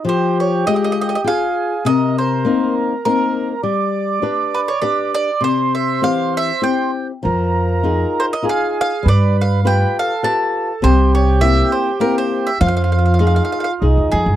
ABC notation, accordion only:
X:1
M:3/4
L:1/8
Q:1/4=100
K:Fm
V:1 name="Accordion"
G4 A2 | B6 | =d6 | c4- c z |
B4 A2 | =B2 B =A3 | G6 | F4 E2 |]